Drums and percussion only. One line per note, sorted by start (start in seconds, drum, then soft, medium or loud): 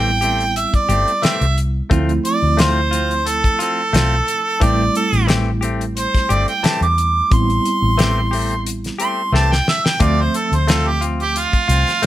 0.22 closed hi-hat medium
0.40 closed hi-hat soft
0.56 closed hi-hat medium
0.74 kick medium
0.74 closed hi-hat soft
0.89 closed hi-hat medium
1.08 closed hi-hat soft
1.23 snare loud
1.23 closed hi-hat medium
1.42 closed hi-hat soft
1.58 closed hi-hat medium
1.91 kick loud
1.91 closed hi-hat medium
2.09 closed hi-hat soft
2.25 closed hi-hat medium
2.59 snare loud
2.59 closed hi-hat medium
2.93 closed hi-hat medium
3.11 closed hi-hat soft
3.27 closed hi-hat medium
3.44 kick medium
3.44 closed hi-hat soft
3.60 closed hi-hat medium
3.94 snare loud
3.94 closed hi-hat medium
4.28 closed hi-hat medium
4.61 kick loud
4.61 closed hi-hat medium
4.95 closed hi-hat medium
5.13 closed hi-hat soft
5.28 snare loud
5.28 closed hi-hat medium
5.62 closed hi-hat medium
5.81 closed hi-hat soft
5.97 closed hi-hat medium
6.15 kick medium
6.15 snare soft
6.15 closed hi-hat soft
6.30 closed hi-hat medium
6.48 closed hi-hat soft
6.64 snare loud
6.64 closed hi-hat medium
6.82 closed hi-hat soft
6.98 closed hi-hat medium
7.32 kick loud
7.32 closed hi-hat medium
7.50 closed hi-hat soft
7.65 closed hi-hat medium
7.99 snare loud
7.99 closed hi-hat medium
8.33 open hi-hat medium
8.51 closed hi-hat soft
8.66 closed hi-hat medium
8.84 snare soft
8.84 closed hi-hat soft
9.00 closed hi-hat medium
9.35 snare medium
9.52 snare medium
9.68 snare medium
9.86 snare medium
10.00 kick loud
10.00 closed hi-hat medium
10.34 closed hi-hat medium
10.53 closed hi-hat soft
10.68 snare loud
10.68 closed hi-hat medium
11.02 closed hi-hat medium
11.20 closed hi-hat soft
11.36 closed hi-hat medium
11.53 kick medium
11.53 closed hi-hat soft
11.69 closed hi-hat medium
11.87 snare soft
11.87 closed hi-hat soft
12.03 closed hi-hat medium